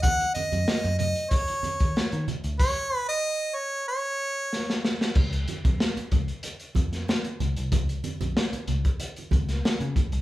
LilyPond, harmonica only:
\new Staff \with { instrumentName = "Harmonica" } { \time 4/4 \key ees \minor \tempo 4 = 94 ges''8 ees''4 ees''8 des''4. r8 | des''8. ees''8. des''8 des''4. r8 | r1 | r1 | }